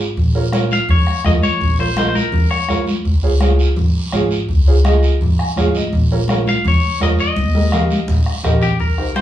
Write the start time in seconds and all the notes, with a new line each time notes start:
Already playing: G#1
0.17 A#1, bombo low, high conga, low conga, long guiro
0.35 F4 A#4 C#5
0.53 F4 A#4 C#5, bombo rim, high conga, short guiro
0.71 F5, high conga, short guiro
0.89 F2 C#5, bombo low, low conga, long guiro
1.07 bombo rim, high conga
1.25 F2 F4 A#4 D#5, bombo low, bombo rim, high conga, low conga, short guiro
1.42 C#5, high conga, short guiro
1.61 A#1, bombo low, high conga, low conga, long guiro
1.79 F4 A#4 C5 C#5
1.97 F4 A#4 C5 D#5, bombo rim, high conga, short guiro
2.09 C5
2.14 A#4, high conga, short guiro
2.32 F2, bombo low, low conga, long guiro
2.50 C#5, bombo rim, high conga
2.68 F2 F4 A#4 C#5, bombo rim, high conga, short guiro
2.87 high conga, short guiro
3.05 C#2, bombo low, high conga, long guiro
3.23 F4 G#4 C#5
3.40 F4 G#4 C#5, bombo rim, high conga, short guiro
3.59 short guiro
3.76 G#1, bombo low, low conga, long guiro
3.95 high conga
4.12 G#1 F4 G#4 C#5, bombo rim, high conga, low conga, short guiro
4.31 short guiro
4.48 C#2, bombo low, high conga, long guiro
4.67 F4 G#4 C#5
4.85 F4 G#4 D#5, bombo rim, high conga, short guiro
5.03 short guiro
5.21 G#1, bombo low, low conga, long guiro
5.39 G#5, bombo rim, high conga
5.56 G#1 F4 G#4 C#5 F5, bombo low, bombo rim, high conga, low conga, short guiro
5.75 D#5, high conga, short guiro
5.93 A#1, bombo low, high conga, low conga, long guiro
6.11 F4 A#4 C#5
6.28 F4 A#4 C#5, bombo rim, high conga, short guiro
6.46 F5, high conga, short guiro
6.65 F2 C#5, bombo low, low conga, long guiro
6.83 high conga
7.00 F2 F4 A#4 C#5 D#5, bombo low, bombo rim, high conga, short guiro
7.19 D#5, short guiro
7.36 D#2, bombo low, high conga, long guiro
7.54 G4 A#4 D#5, high conga
7.72 G4 A#4 F5, bombo rim, low conga, short guiro
7.90 high conga, short guiro
8.08 A#1, bombo low, low conga, long guiro
8.26 bombo rim
8.44 A#1 G4 A#4 D#5, bombo low, bombo rim, low conga, short guiro
8.61 G4, low conga, short guiro
8.80 C2 A#4, bombo low, high conga, long guiro
8.98 D#4 G4 C5, bombo rim
9.16 D#4 G4 C5, bombo rim, high conga, short guiro